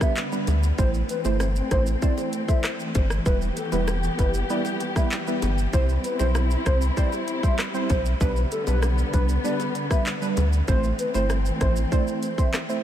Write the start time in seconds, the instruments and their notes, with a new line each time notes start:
Already playing: string section D3 G3 B3
0.01 synth stab G3 B3 D4 B4, soft synth lead E5, kick, cross-stick, shaker
0.17 clap, shaker
0.32 synth stab G3 B3 D4 B4, shaker
0.47 sub bass D2, closed hi-hat, high bongo, low bongo, shaker
0.63 shaker
0.78 sub bass A1, string section E3 A3 C4, synth stab A3 C4 E4 C5, soft synth lead C5, kick, shaker
0.94 shaker
1.09 soft synth lead B4, closed hi-hat, shaker
1.25 sub bass G1, synth stab A3 C4 E4 C5, soft synth lead C5, high bongo, shaker
1.40 cross-stick, high bongo, shaker
1.56 shaker
1.71 sub bass A1, synth stab A3 C4 E4 C5, soft synth lead C5, kick, cross-stick, closed hi-hat, low bongo, shaker
1.87 shaker
2.02 synth stab A3 C4 E4 C5, soft synth lead D5, kick, shaker
2.18 high bongo, shaker
2.33 closed hi-hat, shaker
2.48 synth stab A3 C4 E4 C5, soft synth lead E5, kick, shaker
2.64 cross-stick, clap, shaker
2.80 shaker
2.95 sub bass G1, soft synth lead C5, kick, closed hi-hat, high bongo, low bongo, shaker
3.10 cross-stick, shaker
3.26 sub bass E1, synth stab G3 B3 E4 B4, string section B3 G4, soft synth lead B4, kick, shaker
3.42 shaker
3.57 soft synth lead A4, closed hi-hat, shaker
3.72 sub bass E1, synth stab G3 B3 E4 B4, soft synth lead B4, high bongo, shaker
3.88 cross-stick, high bongo, shaker
4.03 shaker
4.19 sub bass F#1, synth stab G3 B3 E4 B4, soft synth lead B4, kick, closed hi-hat, shaker
4.34 shaker
4.50 synth stab G3 B3 E4 B4, soft synth lead D5, shaker
4.65 high bongo, shaker
4.80 closed hi-hat, shaker
4.96 synth stab G3 B3 E4 B4, soft synth lead E5, kick, cross-stick, shaker
5.12 clap, shaker
5.27 synth stab G3 B3 E4 B4, shaker
5.42 sub bass G1, closed hi-hat, high bongo, low bongo, shaker
5.58 shaker
5.73 sub bass C2, synth stab G3 C4 E4 C5, string section G3 C4 E4, soft synth lead C5, kick, shaker
5.89 shaker
6.04 soft synth lead B4, closed hi-hat, shaker
6.19 sub bass B1, synth stab G3 C4 E4 C5, soft synth lead C5, high bongo, shaker
6.35 cross-stick, high bongo, shaker
6.51 shaker
6.66 sub bass C2, synth stab G3 C4 E4 C5, soft synth lead C5, kick, cross-stick, closed hi-hat, shaker
6.81 shaker
6.97 synth stab G3 C4 E4 C5, soft synth lead D5, kick, shaker
7.12 high bongo, shaker
7.28 closed hi-hat, shaker
7.43 synth stab G3 C4 E4 C5, soft synth lead E5, kick, shaker
7.59 cross-stick, clap, shaker
7.74 synth stab G3 C4 E4 C5, shaker
7.90 sub bass B1, soft synth lead C5, kick, closed hi-hat, high bongo, low bongo, shaker
8.06 shaker
8.20 sub bass B1, string section D3 B3, synth stab G3 B3 D4 B4, soft synth lead B4, kick, shaker
8.36 shaker
8.52 soft synth lead A4, closed hi-hat, shaker
8.67 sub bass B1, synth stab G3 B3 D4 B4, soft synth lead B4, high bongo, shaker
8.82 cross-stick, high bongo, shaker
8.98 shaker
9.13 sub bass C2, synth stab G3 B3 D4 B4, soft synth lead B4, kick, closed hi-hat, shaker
9.29 shaker
9.44 synth stab G3 B3 D4 B4, soft synth lead D5, shaker
9.60 high bongo, shaker
9.75 closed hi-hat, shaker
9.90 synth stab G3 B3 D4 B4, soft synth lead E5, kick, cross-stick, shaker
10.06 clap, shaker
10.21 synth stab G3 B3 D4 B4, shaker
10.37 sub bass D2, closed hi-hat, high bongo, low bongo, shaker
10.53 shaker
10.68 sub bass A1, string section E3 A3 C4, synth stab A3 C4 E4 C5, soft synth lead C5, kick, shaker
10.84 shaker
10.99 soft synth lead B4, closed hi-hat, shaker
11.14 sub bass G1, synth stab A3 C4 E4 C5, soft synth lead C5, high bongo, shaker
11.30 cross-stick, high bongo, shaker
11.46 shaker
11.61 sub bass A1, synth stab A3 C4 E4 C5, soft synth lead C5, kick, cross-stick, closed hi-hat, high bongo, shaker
11.76 shaker
11.92 synth stab A3 C4 E4 C5, soft synth lead D5, kick, shaker
12.08 shaker
12.23 closed hi-hat, shaker
12.38 synth stab A3 C4 E4 C5, soft synth lead E5, kick, shaker
12.54 cross-stick, clap, high bongo, shaker
12.69 synth stab A3 C4 E4 C5, shaker